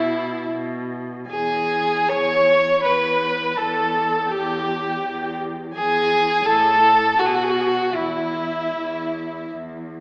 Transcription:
Already playing: B2 E4 E5
0.51 B2
1.30 E2 G#4 G#5
2.09 E2 C#5 C#6
2.84 E2 B4 B5
3.56 E2 A4 A5
4.31 E2 G4 G5
5.05 E2
5.75 E2 G#4 G#5
6.46 A2 A4 A5
7.18 B2 F#4 F#5
7.26 G#4
7.35 F#4
7.43 G#4
7.50 F#4
7.60 G#4
7.67 F#4
7.95 E2 E4 E5
8.75 E2
9.52 E2

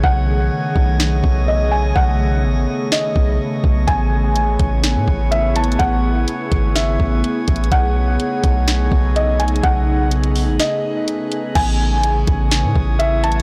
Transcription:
Already playing: C#3 D#3 A3 G#4 C#5
0.04 B1 A3 B3 G#4 D#5 F#5, kick
0.76 B1, kick
1.00 snare
1.24 B1, kick
1.48 D#5
1.71 G#5
1.96 B1 F#5, kick
2.44 A1
2.92 D#5, snare
3.16 B1, kick
3.64 B1, kick
3.87 A1 B3 E4 G#4 C#5 G#5, kick, closed hi-hat
4.36 closed hi-hat
4.60 A1, kick, closed hi-hat
4.84 snare, closed hi-hat
4.96 A2
5.08 A1, kick
5.31 E5, closed hi-hat
5.56 A5, closed hi-hat
5.64 closed hi-hat
5.72 closed hi-hat
5.79 A1 F#5, kick, closed hi-hat
6.28 closed hi-hat
6.52 G#1, kick, closed hi-hat
6.75 E5, snare, closed hi-hat
7.00 A1, kick
7.24 closed hi-hat
7.48 A1, kick, closed hi-hat
7.56 closed hi-hat
7.64 closed hi-hat
7.72 B1 C#3 A3 D#4 F#5, kick, closed hi-hat
8.20 closed hi-hat
8.44 B1, kick, closed hi-hat
8.68 snare, closed hi-hat
8.92 B1, kick
9.16 D#5, closed hi-hat
9.39 G#5, closed hi-hat
9.48 closed hi-hat
9.56 closed hi-hat
9.63 B1 B4 F#5, kick, closed hi-hat
10.11 closed hi-hat
10.24 closed hi-hat
10.36 open hi-hat
10.48 A1
10.60 D#5, snare, closed hi-hat
11.08 closed hi-hat
11.32 closed hi-hat
11.55 A1 C#3 E3 A3 B3 E4 G#4 C#5 G#5, kick, closed hi-hat, crash
12.04 closed hi-hat
12.27 A1, kick, closed hi-hat
12.51 snare, closed hi-hat
12.64 A2
12.76 A1, kick
12.99 E5, closed hi-hat
13.24 A5, closed hi-hat
13.32 closed hi-hat

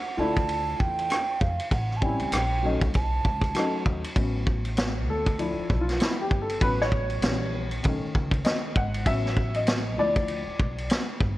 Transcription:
Already playing: F#5
0.17 D2 A3 D4 E4 F4 A5
0.36 kick, ride
0.49 ride
0.80 E2 G5, kick
0.99 ride
1.10 cross-stick, hi-hat pedal, ride
1.41 F2 F5, kick
1.60 ride
1.71 A1 F#5, kick, ride
1.91 cross-stick
1.97 A5
2.01 G3 C4 C#4 E4 G#5, kick
2.19 C#2, ride
2.32 A#1 G5, cross-stick, hi-hat pedal, ride
2.63 F#3 A3 C#4 D#4
2.81 C2, kick, ride
2.94 B1 A5, kick, ride
3.25 C#2, kick
3.41 kick, ride
3.55 F#3 A3 C#4 D#4, cross-stick, hi-hat pedal, ride
3.86 D#2, kick
4.04 ride
4.16 A1 F#3 B3 C#4, kick, ride
4.47 kick
4.65 ride
4.77 snare, hi-hat pedal, ride
5.07 D2 A4
5.26 kick, ride
5.39 F3 D4 E4, ride
5.57 muted upright bass stroke
5.70 B1, kick
5.81 F4
5.89 snare, ride
6.00 E4, snare, hi-hat pedal, ride
6.21 G4
6.31 G1, kick
6.42 A4
6.50 ride
6.61 A1 F#3 B3 C#4 B4, kick, ride
6.81 C#5, snare
6.92 kick
7.10 ride
7.22 A#1 E3 G3 C#4, snare, hi-hat pedal, ride
7.71 ride
7.83 B1 D#3 A3 C#4, kick, ride
8.02 muted upright bass stroke
8.15 C#2, kick
8.31 kick, ride
8.45 D#5, snare, hi-hat pedal, ride
8.76 G#1 F#5, kick
8.94 ride
9.06 A1 F#3 B3 C#4 E5, kick, ride
9.26 snare
9.37 kick
9.54 D#5, ride
9.67 snare, hi-hat pedal, ride
9.98 D2 F3 D4 E4 D5
10.16 kick, ride
10.28 ride
10.47 muted upright bass stroke
10.59 B1, kick
10.78 ride
10.90 snare, hi-hat pedal, ride
11.20 G1, kick

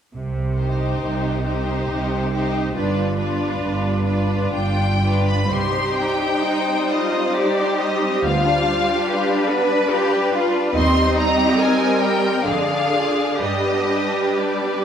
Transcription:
0.14 C2 C3
0.58 D#4 G4 C5
1.02 C2 C3
1.46 D#4 G4 C5
1.90 C2 C3
2.33 D#4 G4 C5
2.74 G1 G2 D4 F4 B4
3.17 D4 F4 B4
3.60 G1 G2
4.05 D4 F4 B4
4.52 G1 G2 G5
5.01 D4 F4 B4
5.27 B5
5.50 C2 G3 D#4 G4 C5 C6
5.73 C4
5.97 D#4 G5
6.20 G4
6.44 D#4
6.67 C4
6.90 G3 F4 D#5
7.13 C4
7.35 D#4 G4 D5
7.58 G4
7.80 D#4 D#5
8.01 C4
8.23 D2 B3 D4 F4 F5
8.45 D4
8.66 F4
8.86 G4
9.07 F4 G4 B4
9.29 D4
9.50 B3 B4
9.70 D4
9.92 F4 G4
10.11 G4
10.33 F4
10.54 D4
10.73 D#2 G3 C4 D#4 D#5 C6
10.94 C4
11.15 D#4 A#5
11.36 G4
11.59 D#4 A#4 G#5
11.80 C4
12.02 G3 G5
12.24 C4
12.46 F2 D3 G#3 D4 G#4 D5 F5
12.70 D4
12.93 F4
13.16 G#4
13.39 G2 G3 G4 B4 D#5
13.63 B3
13.88 D4
14.13 G4
14.37 D4 D5
14.63 B3

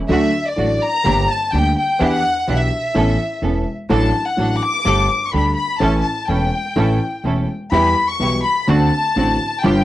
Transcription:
0.08 D2 D3 F#3 A3 D4 F#4 A4 E5
0.45 D5
0.56 A1 A2 F#3 A3 D4 F#4 A4
0.80 A#5
1.04 G1 G2 D3 G3 A#3 D4 G4
1.29 A5
1.52 D2 D3 G3 A#3 D4 G4 G5
1.78 G5
1.99 E2 E3 B3 D4 E4 G4 F#5
2.47 B1 B2 E3 B3 D4 E4 G4 E5
2.94 A1 A2 E3 B3 C#4 A4
3.42 E1 E2 E3 B3 C#4 A4
3.89 A1 A2 F#3 A3 D4 F#4 A4 A5
4.25 F#5
4.36 A1 A2 F#3 A3 D4 F#4 A4
4.60 D6
4.85 G1 G2 G3 A3 D4 G4 A4
5.26 C#6
5.30 D2 D3 G3 A3 D4 G4 A4 B5
5.54 B5
5.78 A1 A2 E3 A3 C#4 E4 A4 A5
6.02 A5
6.25 E1 E2 E3 A3 C#4 E4 A4 G5
6.76 A1 A2 E3 A3 C#4 E4 A4
7.23 E1 E2 E3 A3 C#4 E4 A4
7.72 E2 E3 G3 B3 E4 G4 B5
8.08 C#6
8.19 B1 B2 E3 G3 B3 E4 G4
8.44 B5
8.67 D2 D3 A3 C4 D4 F#4 A5
9.16 A1 A2 D3 A3 C4 D4 F#4
9.63 G1 G2 D3 G3 B3 F4 G4 G5

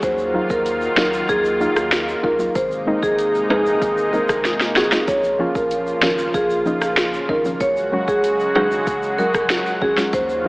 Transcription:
Already playing: F#3
0.03 D#2 D#3 A#3 F4 C5, kick, closed hi-hat, shaker
0.18 shaker
0.33 F#3 A#3 D#4 F4
0.50 D#2 A#4, kick, shaker
0.66 closed hi-hat, shaker
0.82 shaker
0.96 C#2 F#3 A#3 D#4 F4 A#4, finger snap, snare
1.13 shaker
1.29 D#2 G#4, kick, closed hi-hat, shaker
1.45 shaker
1.60 F#3 A#3 D#4 F4, shaker
1.76 D#2, cross-stick, shaker
1.91 finger snap, snare, closed hi-hat, shaker
2.08 shaker
2.23 C#2 D#4 F4 A#4, kick
2.39 F#3 A#3 D#4 F4, shaker
2.55 G#1 C3 G#3 D#4 C5, kick, closed hi-hat, shaker
2.72 shaker
2.86 G#3 A#3 C4 D#4
3.03 G#1 G#4, kick, shaker
3.19 closed hi-hat, shaker
3.35 shaker
3.49 A#1 G#3 A#3 C4 D#4 G#4, high timbale
3.66 shaker
3.82 G#1, kick, closed hi-hat, shaker
3.98 shaker
4.12 G#3 A#3 C4 D#4 A#4, shaker
4.29 G#1, kick, cross-stick, shaker
4.45 snare, closed hi-hat, shaker
4.61 snare, shaker
4.76 A#1 C4 F#4 G#4, snare
4.92 G#3 A#3 C4 D#4, snare, shaker
5.08 A#1 C#3 F3 F4 C#5, kick, closed hi-hat, shaker
5.24 shaker
5.39 F3 A#3 C#4 F4
5.55 A#1 A#4, kick, shaker
5.71 closed hi-hat, shaker
5.87 shaker
6.02 G#1 F3 A#3 C#4 F4 A#4, finger snap, snare
6.19 shaker
6.34 A#1 G#4, kick, closed hi-hat, shaker
6.50 shaker
6.65 F3 A#3 C#4 D#4, shaker
6.81 A#1, cross-stick, shaker
6.96 finger snap, snare, closed hi-hat, shaker
7.14 shaker
7.29 G#1 C#4 D#4 A#4, kick
7.44 F3 A#3 C#4 F4, shaker
7.60 F#1 F#3 G#3 F#4 C#5, kick, closed hi-hat, shaker
7.77 shaker
7.92 F#3 G#3 C#4 F#4
8.08 F#1 G#4, kick, shaker
8.24 closed hi-hat, shaker
8.40 shaker
8.55 G#1 F#3 G#3 C#4 F#4 G#4, high timbale
8.71 shaker
8.87 F#1, kick, closed hi-hat, shaker
9.03 shaker
9.18 F#3 G#3 C#4 F#4 A#4, shaker
9.34 F#1, kick, cross-stick, shaker
9.49 finger snap, snare, closed hi-hat, shaker
9.66 shaker
9.81 G#1 C#4 F#4 G#4, kick
9.97 F#3 G#3 C#4 F4, snare, shaker
10.13 D#2 D#3 A#3 F4 C5, kick, closed hi-hat, shaker
10.29 shaker
10.44 F#3 A#3

